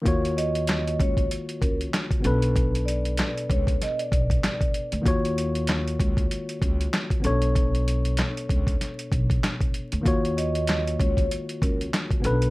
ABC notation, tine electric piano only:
X:1
M:4/4
L:1/8
Q:"Swing 16ths" 1/4=96
K:Ebm
V:1 name="Tine electric piano"
[E,B,FGd]6- [E,B,FGd] [=B,,=B,^C=D=A=B]- | [=B,,=B,^C=D=A=B]6- [B,,B,CDAB] z | [E,B,FGd]6- [E,B,FGd] [=B,,=B,^C=D=A^c]- | [=B,,=B,^C=D=A^c]6- [B,,B,CDAc] z |
[E,B,FGd]6- [E,B,FGd] [=B,,=B,^C=D=A=B] |]